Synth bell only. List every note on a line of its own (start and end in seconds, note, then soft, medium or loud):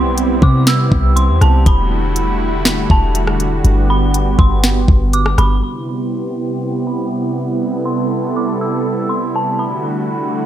0.00 0.39 C6 medium
0.43 0.66 D6 medium
0.68 1.14 E6 loud
1.16 1.40 C6 medium
1.42 1.65 A5 medium
1.66 2.86 B5 medium
2.91 3.14 A5 medium
3.90 4.36 B5 medium
4.39 4.62 C6 medium
5.14 5.37 D6 medium
5.38 5.62 B5 medium
5.63 6.83 C6 medium
6.87 7.11 B5 medium
7.85 8.32 C6 medium
8.36 8.60 D6 medium
8.61 9.08 E6 medium
9.09 9.33 C6 medium
9.36 9.59 A5 medium
9.59 10.46 B5 medium